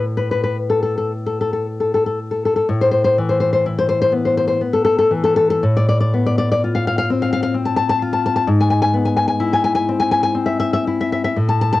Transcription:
0.00 2.62 A2 medium
0.17 0.30 B4 medium
0.31 0.43 B4 medium
0.44 0.56 B4 medium
0.70 0.82 A4 medium
0.83 0.96 A4 medium
0.98 1.11 A4 medium
1.26 1.39 A4 medium
1.41 1.52 A4 medium
1.53 1.65 A4 medium
1.80 1.92 A4 soft
1.94 2.05 A4 medium
2.06 2.18 A4 medium
2.31 2.43 A4 medium
2.45 2.55 A4 medium
2.56 2.67 A4 soft
2.69 5.60 A2 medium
2.81 2.90 C5 medium
2.91 3.03 C5 medium
3.04 3.16 C5 medium
3.18 4.61 E3 medium
3.29 3.39 C5 medium
3.40 3.52 C5 medium
3.53 3.64 C5 medium
3.66 5.12 E4 medium
3.78 3.87 C5 medium
3.89 4.00 C5 medium
4.02 4.12 C5 medium
4.12 4.60 B3 medium
4.25 4.36 C5 medium
4.37 4.46 C5 medium
4.47 4.60 C5 medium
4.61 5.64 B3 soft
4.73 4.83 A4 medium
4.85 4.97 A4 medium
4.98 5.11 A4 medium
5.11 5.63 E3 medium
5.24 5.35 A4 medium
5.36 5.49 A4 medium
5.50 5.63 A4 medium
5.63 8.43 A2 medium
5.77 5.87 D5 medium
5.89 5.99 D5 medium
6.00 6.12 D5 medium
6.14 7.54 B3 medium
6.26 6.37 D5 medium
6.38 6.49 D5 medium
6.52 6.61 D5 medium
6.64 8.01 F4 medium
6.75 6.85 F5 medium
6.87 6.97 F5 medium
6.98 7.08 F5 loud
7.10 7.53 C4 medium
7.22 7.31 F5 medium
7.33 7.41 F5 medium
7.43 7.54 F5 loud
7.54 8.47 C4 soft
7.65 7.75 A5 medium
7.76 7.88 A5 loud
7.89 8.00 A5 loud
8.02 8.48 F4 medium
8.13 8.24 A5 medium
8.26 8.35 A5 medium
8.36 8.47 A5 loud
8.47 11.33 G#2 medium
8.60 8.69 G#5 medium
8.70 8.81 G#5 medium
8.82 8.93 G#5 loud
8.94 10.35 B3 medium
9.05 9.15 G#5 medium
9.17 9.27 G#5 medium
9.28 9.40 G#5 medium
9.40 10.85 E4 medium
9.53 9.63 G#5 loud
9.64 9.74 G#5 loud
9.75 9.87 G#5 loud
9.89 10.34 C4 medium
10.00 10.10 G#5 loud
10.11 10.22 G#5 loud
10.23 10.35 G#5 loud
10.35 11.36 C4 soft
10.46 10.58 E5 medium
10.60 10.72 E5 medium
10.73 10.86 E5 loud
10.87 11.38 E4 medium
11.01 11.11 E5 medium
11.12 11.23 E5 medium
11.24 11.37 E5 loud
11.36 11.80 A2 medium
11.49 11.60 A5 medium
11.61 11.71 A5 loud
11.73 11.80 A5 loud

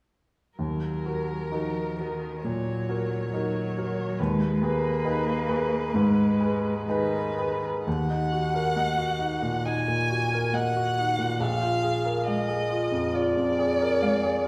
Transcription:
0.58 1.03 D#2 soft
0.58 1.47 F#3 soft
0.58 2.38 A#4 soft
1.06 1.47 F#4 soft
1.06 1.48 A#4 soft
1.52 1.99 F3 soft
1.52 1.93 D#4 soft
1.52 1.93 F#4 soft
1.52 1.94 A#4 soft
1.98 2.44 D#3 soft
1.98 2.39 F#4 soft
1.98 2.39 A#4 soft
2.42 2.87 A#2 soft
2.42 3.32 F#3 soft
2.42 4.20 C#5 soft
2.89 3.29 F#4 soft
2.89 3.29 A#4 soft
3.33 4.20 F#3 soft
3.33 3.72 D#4 soft
3.33 3.73 F#4 soft
3.33 3.73 A#4 soft
3.78 4.15 F#4 soft
3.78 4.16 A#4 soft
4.19 4.60 D#2 soft
4.19 4.63 G#3 soft
4.19 6.87 B4 soft
4.62 5.94 A#3 soft
4.62 5.00 G#4 soft
4.62 5.00 B4 soft
5.05 5.44 D#4 soft
5.05 5.44 G#4 soft
5.05 5.44 B4 soft
5.49 5.89 G#4 soft
5.49 5.89 B4 soft
5.93 6.39 G#2 soft
5.93 6.88 G#3 soft
6.40 6.84 G#4 soft
6.40 6.84 B4 soft
6.88 7.65 D#3 soft
6.88 7.34 D#4 soft
6.88 7.35 G#4 soft
6.88 7.64 B4 soft
6.88 7.35 B4 soft
7.39 7.83 G#4 soft
7.39 7.83 B4 soft
7.87 9.61 D#2 soft
7.87 9.67 F#5 medium
8.10 8.45 D#4 soft
8.32 8.67 F#4 soft
8.54 8.89 A#4 soft
8.76 9.43 A#3 soft
8.76 9.12 D#5 soft
8.98 9.34 F#4 soft
9.19 9.55 D#4 soft
9.42 9.78 A#2 soft
9.65 10.01 D#4 soft
9.65 10.55 G#5 medium
9.88 10.23 A#2 soft
10.10 10.45 F#4 soft
10.33 10.67 A#4 soft
10.53 11.18 A#3 soft
10.53 10.89 D#5 soft
10.53 11.42 F#5 medium
10.77 11.11 F#4 soft
10.98 11.32 D#4 soft
11.18 11.40 A#2 soft
11.40 13.12 A#1 soft
11.40 12.26 F5 medium
11.61 11.96 F4 soft
11.83 12.18 G#4 soft
12.05 12.40 A#4 soft
12.26 12.94 G#3 soft
12.26 13.17 D#5 medium
12.26 12.62 F5 soft
12.48 12.84 G#4 soft
12.70 13.06 F4 soft
12.91 13.28 F2 soft
13.14 13.49 F4 soft
13.14 14.48 D5 medium
13.37 13.72 F2 soft
13.58 13.93 G#4 soft
13.81 14.15 A#4 soft
14.02 14.48 G#3 soft
14.02 14.37 F5 soft
14.23 14.48 G#4 soft
14.44 14.48 F4 soft

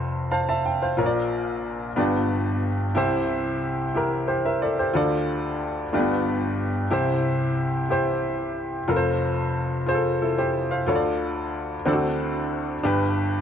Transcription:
0.00 0.94 F1 medium
0.00 0.94 F2 medium
0.00 0.97 F4 medium
0.00 1.01 A4 medium
0.00 0.32 C5 medium
0.31 0.48 C5 soft
0.31 0.47 F5 soft
0.31 0.47 A5 soft
0.49 0.80 E5 soft
0.49 0.80 A5 medium
0.66 0.96 G5 medium
0.82 1.13 C5 soft
0.82 1.13 F5 soft
0.97 1.93 A#1 medium
0.97 1.93 A#2 medium
0.97 1.86 F4 medium
0.97 1.87 A#4 medium
0.97 1.05 C#5 medium
1.06 1.91 D5 medium
1.96 2.92 G1 medium
1.96 2.92 G2 medium
1.96 2.85 B3 medium
1.96 2.86 D4 soft
1.96 2.86 F4 soft
1.96 2.86 G4 medium
1.96 2.87 D5 medium
2.95 4.90 C2 medium
2.95 4.90 C3 medium
2.95 3.84 E4 medium
2.95 3.85 G4 medium
2.95 3.86 C5 medium
3.95 4.84 E4 medium
3.95 4.27 G4 medium
3.95 4.29 A#4 medium
4.28 4.44 G4 soft
4.28 4.44 C5 soft
4.45 4.61 A#4 soft
4.45 4.61 E5 medium
4.62 4.78 A4 soft
4.62 4.77 D5 medium
4.79 5.10 G4 soft
4.79 5.10 C5 soft
4.93 5.89 D2 medium
4.93 5.89 D3 medium
4.93 5.82 F4 medium
4.93 5.83 A4 medium
4.93 5.84 D5 medium
5.93 6.88 G1 medium
5.93 6.88 G2 medium
5.93 5.99 A3 soft
5.93 6.82 D4 medium
5.93 6.82 F4 medium
5.93 6.82 G4 medium
5.93 6.83 D5 medium
5.99 6.85 B3 medium
6.91 8.85 C2 medium
6.91 8.85 C3 medium
6.91 7.80 E4 medium
6.91 7.80 G4 medium
6.91 7.81 C5 medium
7.89 8.78 E4 medium
7.89 8.79 G4 medium
7.89 8.80 C5 medium
8.88 10.82 F1 medium
8.88 10.82 F2 medium
8.88 9.77 F4 medium
8.88 9.78 A4 medium
8.88 8.96 A#4 medium
8.96 9.82 C5 medium
9.86 10.20 F4 medium
9.86 9.94 G#4 soft
9.86 10.21 C5 medium
9.94 10.20 A4 medium
10.22 10.37 E4 soft
10.22 10.37 A4 soft
10.38 10.69 G4 soft
10.38 10.69 C5 medium
10.71 11.02 C5 soft
10.71 11.02 F5 soft
10.87 11.82 D2 medium
10.87 11.82 D3 medium
10.87 11.75 F4 medium
10.87 11.76 A4 medium
10.87 10.94 C#5 medium
10.95 11.80 D5 medium
11.86 12.80 D2 medium
11.86 12.81 D3 medium
11.86 12.74 C4 medium
11.86 12.74 D4 medium
11.86 11.92 E4 soft
11.86 12.75 A4 medium
11.86 12.75 D5 medium
11.93 12.78 F#4 medium
12.83 13.41 G1 medium
12.83 13.41 G2 medium
12.83 13.41 D4 medium
12.83 13.41 G4 medium
12.83 13.41 B4 medium

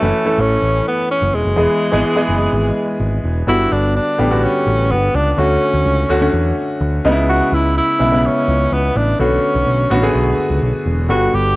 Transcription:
0.00 0.11 F#1 medium
0.00 0.25 E3 medium
0.00 0.02 A3 medium
0.00 0.42 A3 medium
0.00 0.17 A3 medium
0.00 0.02 C#4 medium
0.00 0.17 C#4 medium
0.00 0.17 E4 medium
0.00 1.59 F#4 loud
0.25 0.84 E3 medium
0.25 0.84 A3 medium
0.25 0.85 C#4 medium
0.25 0.85 A4 medium
0.38 0.56 A1 medium
0.38 0.87 C#4 loud
0.62 0.80 A1 medium
0.88 1.09 B3 medium
1.11 1.36 C#4 medium
1.22 1.31 F#1 medium
1.33 1.42 E1 medium
1.33 3.01 G#3 medium
1.45 1.54 F#1 medium
1.56 1.66 E1 medium
1.56 1.79 E3 medium
1.56 1.79 G#3 medium
1.56 1.79 B3 medium
1.56 1.79 G#4 medium
1.92 2.02 G#1 medium
1.92 2.07 E3 medium
1.92 2.07 G#3 medium
1.92 2.08 B3 medium
1.92 2.08 G#4 medium
2.16 2.75 E3 medium
2.16 2.75 G#3 medium
2.16 2.75 B3 medium
2.16 2.75 G#4 medium
2.29 2.46 F#1 medium
2.52 2.70 G#1 medium
3.00 3.18 G#1 medium
3.24 3.42 E1 medium
3.47 3.65 G1 medium
3.47 3.91 D3 medium
3.47 3.91 G3 medium
3.47 3.92 B3 medium
3.47 3.74 E4 loud
3.47 3.92 F#4 medium
3.71 3.98 G1 medium
3.71 3.95 D4 loud
3.96 4.45 D4 medium
4.18 4.46 A1 medium
4.18 4.26 D3 medium
4.18 4.26 G3 medium
4.18 4.26 B3 medium
4.18 4.27 G4 medium
4.30 4.89 D3 medium
4.30 4.89 G3 medium
4.30 4.89 B3 medium
4.30 4.90 F#4 medium
4.43 4.93 C#4 medium
4.67 4.92 A1 medium
4.90 5.08 G1 medium
4.90 5.17 B3 medium
5.14 5.32 C#2 medium
5.14 5.32 D4 medium
5.32 5.40 D4 medium
5.37 5.56 D2 medium
5.37 5.82 D3 medium
5.37 5.82 A3 medium
5.37 5.82 C#4 medium
5.37 6.34 C#4 medium
5.37 5.82 F#4 medium
5.74 5.83 D2 medium
5.85 6.03 C#2 medium
6.09 6.27 D2 medium
6.09 6.17 D3 medium
6.09 6.17 A3 medium
6.09 6.17 C#4 medium
6.09 6.17 F#4 medium
6.21 6.80 D3 medium
6.21 6.80 A3 medium
6.21 6.80 C#4 medium
6.21 6.80 F#4 medium
6.33 6.51 E2 medium
6.81 6.99 D2 medium
7.04 7.40 C#2 medium
7.04 7.81 C#3 medium
7.04 7.81 G#3 medium
7.04 7.81 B3 medium
7.04 7.11 D#4 medium
7.12 7.84 E4 loud
7.29 7.55 F#4 loud
7.52 7.79 C#2 loud
7.52 7.77 E4 loud
7.78 8.27 E4 medium
7.99 8.27 B1 medium
7.99 8.07 C#3 medium
7.99 8.07 G#3 medium
7.99 8.07 B3 medium
7.99 8.08 E4 medium
8.11 8.70 C#3 medium
8.11 8.70 G#3 medium
8.11 8.71 B3 medium
8.11 8.71 E4 medium
8.26 8.75 C#4 medium
8.48 8.66 C#2 medium
8.72 8.89 C#2 medium
8.72 8.98 B3 medium
8.95 9.13 A1 medium
8.95 9.19 D4 medium
9.19 9.37 B1 loud
9.19 9.63 D3 medium
9.19 9.63 A3 medium
9.19 9.63 B3 medium
9.19 10.11 C#4 medium
9.19 9.63 F#4 medium
9.55 9.64 B1 medium
9.67 9.85 B1 medium
9.90 10.08 A1 medium
9.90 9.98 D3 medium
9.90 9.98 A3 medium
9.90 9.98 B3 medium
9.90 9.98 F#4 medium
10.02 10.61 D3 medium
10.02 10.61 A3 medium
10.02 10.61 B3 medium
10.02 10.61 G#4 medium
10.14 10.32 B1 medium
10.38 muted picked electric bass stroke soft
10.50 10.59 C#2 medium
10.62 10.71 B1 medium
10.86 11.09 E1 medium
11.09 11.27 G1 loud
11.09 11.53 D3 medium
11.09 11.53 G3 medium
11.09 11.53 B3 medium
11.09 11.36 F#4 loud
11.09 11.54 F#4 medium
11.33 11.56 G1 medium
11.33 11.56 G4 loud

